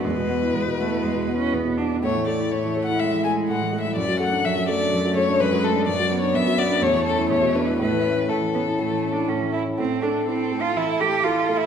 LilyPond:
<<
  \new Staff \with { instrumentName = "Violin" } { \time 4/4 \key a \major \tempo 4 = 123 b'2. r4 | cis''8 d''8 \tuplet 3/2 { cis''4 fis''8 } e''8 gis''8 \tuplet 3/2 { fis''4 e''8 } | d''8 fis''8 e''8 d''4 cis''8 b'8 a'8 | \tuplet 3/2 { d''4 cis''8 } e''8 d''8 cis''8 a'8 cis''8 b'8 |
b'4 a'2~ a'8 r8 | \key a \minor a'1 | }
  \new Staff \with { instrumentName = "Cello" } { \time 4/4 \key a \major gis4 gis8 a8 \tuplet 3/2 { gis4 cis'8 } b8 d'8 | a4 a4 gis2 | fis2 a4 gis4 | fis4 b4 a2 |
a4 a8 b8 \tuplet 3/2 { a4 d'8 } cis'8 e'8 | \key a \minor c'8 d'8 \tuplet 3/2 { c'4 f'8 } e'8 g'8 \tuplet 3/2 { f'4 e'8 } | }
  \new Staff \with { instrumentName = "Grand piano" } { \time 4/4 \key a \major e,16 b,16 b16 e'16 e,16 b,16 b16 e'16 e,16 b,16 b16 e'16 e,16 b,16 b16 e'16 | a,16 e16 a16 e'16 a,16 e16 a16 e'16 a,16 e16 a16 e'16 a,16 e16 a16 e'16 | fis,16 fis16 a16 d'16 fis,16 fis16 a16 d'16 fis,16 fis16 a16 d'16 fis,16 fis16 a16 d'16 | fis,16 fis16 b16 d'16 fis,16 fis16 b16 d'16 e,16 e16 cis'16 e'16 e,16 b,16 d'16 e'16 |
a,16 e16 cis'16 e'16 a,16 e16 cis'16 e'16 a,16 e16 cis'16 e'16 a,16 e16 cis'16 e'16 | \key a \minor a,8 <a a'>8 <e' a'>8 <a a'>8 e8 <a a'>8 <e' a'>8 <a a'>8 | }
>>